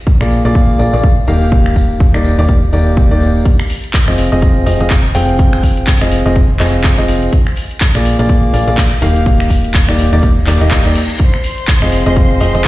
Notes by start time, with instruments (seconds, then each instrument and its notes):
0.07 kick, tambourine
0.21 fm bass A#1, grand piano A#3 F4 G#4 D5, finger snap, tambourine
0.31 tambourine
0.45 fm bass A#1, grand piano A#3 F4 G#4 D5, tambourine
0.55 kick, tambourine
0.69 tambourine
0.79 fm bass A#1, grand piano A#3 F4 G#4 D5, tambourine
0.93 fm bass A#1, grand piano A#3 F4 G#4 D5, tambourine
1.04 kick, tambourine
1.18 tambourine
1.27 fm bass D#1, grand piano A#3 D#4 G4 F5, tambourine
1.41 tambourine
1.51 kick, tambourine
1.65 finger snap, tambourine
1.76 kick, tambourine
1.91 tambourine
2.00 kick, tambourine
2.14 fm bass D#1, grand piano A#3 D#4 G4 D5, finger snap, tambourine
2.24 tambourine
2.39 fm bass D#1, grand piano A#3 D#4 G4 D5, tambourine
2.49 kick, tambourine
2.63 tambourine
2.73 fm bass D#1, grand piano A#3 D#4 G4 D5, tambourine
2.87 tambourine
2.97 kick, tambourine
3.11 fm bass D#1, grand piano A#3 D#4 G4 D5, tambourine
3.21 tambourine
3.36 tambourine
3.45 kick, closed hi-hat, tambourine
3.59 finger snap, tambourine
3.70 open hi-hat, tambourine
3.84 closed hi-hat, tambourine
3.93 kick, clap, closed hi-hat, tambourine
4.08 fm bass F1, grand piano C4 F4 G#4 D#5, finger snap, tambourine
4.18 open hi-hat, tambourine
4.32 fm bass F1, grand piano C4 F4 G#4 D#5, closed hi-hat, tambourine
4.42 kick, closed hi-hat, tambourine
4.56 tambourine
4.66 fm bass F1, grand piano C4 F4 G#4 D#5, open hi-hat, tambourine
4.80 fm bass F1, grand piano C4 F4 G#4 D#5, closed hi-hat, tambourine
4.90 kick, clap, closed hi-hat, tambourine
5.05 tambourine
5.14 fm bass F1, grand piano C4 F4 G#4 G5, open hi-hat, tambourine
5.29 closed hi-hat, tambourine
5.38 kick, closed hi-hat, tambourine
5.53 finger snap, tambourine
5.63 kick, open hi-hat, tambourine
5.77 closed hi-hat, tambourine
5.86 kick, clap, closed hi-hat, tambourine
6.01 fm bass F1, grand piano C4 F4 G#4 D#5, finger snap, tambourine
6.12 open hi-hat, tambourine
6.26 fm bass F1, grand piano C4 F4 G#4 D#5, closed hi-hat, tambourine
6.36 kick, closed hi-hat, tambourine
6.49 tambourine
6.60 fm bass F1, grand piano C4 F4 G#4 D#5, clap, open hi-hat, tambourine
6.73 closed hi-hat, tambourine
6.84 kick, clap, closed hi-hat, tambourine
6.98 fm bass F1, grand piano C4 F4 G#4 D#5, tambourine
7.08 open hi-hat, tambourine
7.22 closed hi-hat, tambourine
7.33 kick, closed hi-hat, tambourine
7.47 finger snap, tambourine
7.56 open hi-hat, tambourine
7.70 closed hi-hat, tambourine
7.81 kick, clap, closed hi-hat, tambourine
7.95 fm bass A#1, grand piano A#3 F4 G#4 D5, finger snap, tambourine
8.05 open hi-hat, tambourine
8.19 fm bass A#1, grand piano A#3 F4 G#4 D5, closed hi-hat, tambourine
8.29 kick, closed hi-hat, tambourine
8.44 tambourine
8.54 fm bass A#1, grand piano A#3 F4 G#4 D5, open hi-hat, tambourine
8.68 fm bass A#1, grand piano A#3 F4 G#4 D5, closed hi-hat, tambourine
8.77 kick, clap, closed hi-hat, tambourine
8.91 tambourine
9.02 fm bass D#1, grand piano A#3 D#4 G4 F5, open hi-hat, tambourine
9.16 closed hi-hat, tambourine
9.26 kick, closed hi-hat, tambourine
9.40 finger snap, tambourine
9.50 kick, open hi-hat, tambourine
9.64 closed hi-hat, tambourine
9.74 kick, clap, closed hi-hat, tambourine
9.89 fm bass D#1, grand piano A#3 D#4 G4 D5, finger snap
9.98 open hi-hat, tambourine
10.13 fm bass D#1, grand piano A#3 D#4 G4 D5, closed hi-hat, tambourine
10.22 kick, closed hi-hat, tambourine, reverse cymbal
10.37 tambourine
10.46 fm bass D#1, grand piano A#3 D#4 G4 D5, clap, open hi-hat, tambourine
10.61 fm bass D#1, grand piano A#3 D#4 G4 D#5, closed hi-hat, tambourine
10.71 kick, clap, closed hi-hat, tambourine
10.85 fm bass D#1, grand piano A#3 D#4 G4 D5, tambourine
10.95 open hi-hat, tambourine
11.09 closed hi-hat, tambourine
11.20 violin section C5 C6, kick, closed hi-hat, tambourine
11.34 finger snap, tambourine
11.43 open hi-hat, tambourine
11.58 closed hi-hat, tambourine
11.68 kick, clap, closed hi-hat, tambourine
11.81 fm bass F1, grand piano C4 F4 G#4 D#5, finger snap, tambourine
11.92 open hi-hat, tambourine
12.06 fm bass F1, grand piano C4 F4 G#4 D#5, closed hi-hat, tambourine
12.16 kick, closed hi-hat, tambourine
12.30 tambourine
12.41 fm bass F1, grand piano C4 F4 G#4 D#5, open hi-hat, tambourine
12.55 fm bass F1, grand piano C4 F4 G#4 D#5, closed hi-hat, tambourine
12.64 kick, clap, closed hi-hat